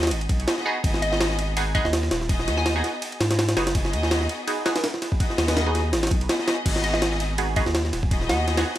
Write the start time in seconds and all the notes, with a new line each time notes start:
Already playing: D#2 B3 D#4 F#4 G#4 D#5
0.03 snare, ride
0.07 snare, ride
0.11 G#1, ride
0.21 ride
0.29 B1, kick, ride
0.40 ride
0.47 B3 D#4 F#4 G#4 D#5, snare, ride
0.57 B3 D#4 F#4 G#4 D#5, snare
0.66 B3 D#4 F#4 G#4
0.84 G#1 B3 D#4 F#4 G#4 D#5, kick, ride
0.94 snare
1.02 D#5, ride
1.12 D#5, snare
1.21 snare, ride
1.31 snare
1.39 ride
1.57 B3 D#4 F#4 G#4, ride
1.75 B3 D#4 F#4 G#4 D#5, kick, ride
1.85 D#2 D#5, snare
1.93 snare, ride
2.03 snare
2.11 D#1, snare, ride
2.21 snare
2.29 B3 D#4 F#4 G#4 D#5, kick, ride
2.40 snare
2.47 D#2, snare, ride
2.58 G#5, snare
2.66 G#5, snare, ride
2.76 B3 D#4 F#4 G#4
2.84 snare, ride
3.02 ride
3.12 ride
3.20 G#2, snare, ride
3.31 snare, ride
3.39 snare, ride
3.49 snare, ride
3.57 F#1 B3 D#4 F#4 G#4, snare, ride
3.67 snare, ride
3.75 B3 D#4 F#4 G#4 D#5, kick, ride
3.85 snare
3.93 D#2, ride
4.03 snare
4.11 snare, ride
4.21 snare
4.29 ride
4.47 B3 D#4 F#4 G#4, ride
4.66 B3 D#4 F#4 G#4, snare, ride
4.76 snare, ride
4.84 snare, ride
4.94 snare
5.02 snare, ride
5.12 kick
5.20 B3 D#4 F#4 G#4 D#5, kick, ride
5.30 snare
5.38 D#2, snare, ride
5.48 snare, ride
5.57 snare, ride
5.66 B3 D#4 F#4 G#4
5.75 snare, ride
5.93 G#1, snare, ride
6.03 snare, ride
6.07 snare, ride
6.11 B1, kick, ride
6.21 ride
6.29 B3 D#4 F#4 G#4 D#5, snare, ride
6.39 B3 D#4 F#4 G#4 D#5, snare
6.48 snare, ride
6.65 G#1 B3 D#4 F#4 G#4 D#5, kick, crash, ride
6.76 snare
6.84 D#5, ride
6.94 D#5, snare
7.02 snare, ride
7.12 snare
7.20 ride
7.38 B3 D#4 F#4 G#4, ride
7.56 B3 D#4 F#4 G#4 D#5, kick, ride
7.66 D#2, snare
7.75 snare, ride
7.85 snare
7.93 D#1, snare, ride
8.03 kick
8.11 B3 D#4 F#4 G#4 D#5, kick, ride
8.21 snare
8.29 D#2 F#5, snare, ride
8.48 snare, ride
8.57 B3 D#4 F#4 G#4, snare, ride